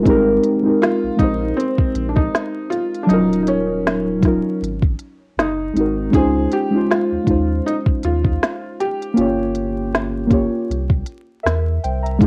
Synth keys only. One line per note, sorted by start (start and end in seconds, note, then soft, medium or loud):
0.03 0.41 G#3 loud
0.03 0.42 C4 loud
0.03 0.43 D#4 loud
0.08 0.44 G4 loud
0.08 0.45 A#4 loud
0.62 1.00 G#3 medium
0.62 1.01 C4 medium
0.62 1.02 D#4 medium
0.67 1.03 G4 medium
0.67 1.04 A#4 medium
1.16 2.18 G#3 medium
1.16 2.19 C4 medium
1.16 2.20 D#4 medium
1.22 2.21 G4 medium
1.22 2.22 C5 medium
3.06 3.82 F#3 loud
3.06 3.83 C#4 medium
3.06 3.84 D#4 medium
3.12 3.85 F4 medium
3.12 3.85 A#4 loud
4.20 4.60 F#3 medium
4.20 4.61 C#4 medium
4.20 4.61 D#4 medium
4.25 4.62 F4 medium
4.25 4.63 A#4 medium
5.73 6.01 G#3 medium
5.73 6.01 C4 medium
5.73 6.02 D#4 medium
5.79 6.03 F#4 medium
5.79 6.04 A#4 medium
6.10 6.49 G#3 medium
6.10 6.50 C#4 medium
6.10 6.51 D#4 medium
6.16 6.51 F4 medium
6.16 6.52 C5 loud
6.70 7.08 G#3 medium
6.70 7.09 C#4 medium
6.70 7.10 D#4 medium
6.76 7.11 F4 medium
6.76 7.12 C5 medium
7.24 8.26 G#3 medium
7.24 8.27 C#4 medium
7.24 8.28 D#4 medium
7.29 8.29 F4 medium
7.29 8.30 C5 medium
9.14 9.90 A#3 loud
9.14 9.91 C#4 medium
9.14 9.92 F4 loud
9.19 9.92 G4 medium
9.19 9.93 C#5 loud
10.27 10.67 A#3 medium
10.27 10.68 C#4 medium
10.27 10.68 F4 medium
10.32 10.69 G4 medium
10.32 10.70 C#5 medium
11.43 11.80 A#4 medium
11.43 11.80 E5 medium
11.84 12.04 C5 medium
11.84 12.04 G5 medium
12.03 12.27 E5 medium
12.03 12.27 A#5 medium
12.18 12.27 G#3 loud
12.18 12.27 D#4 loud
12.18 12.27 F4 loud
12.24 12.27 G4 loud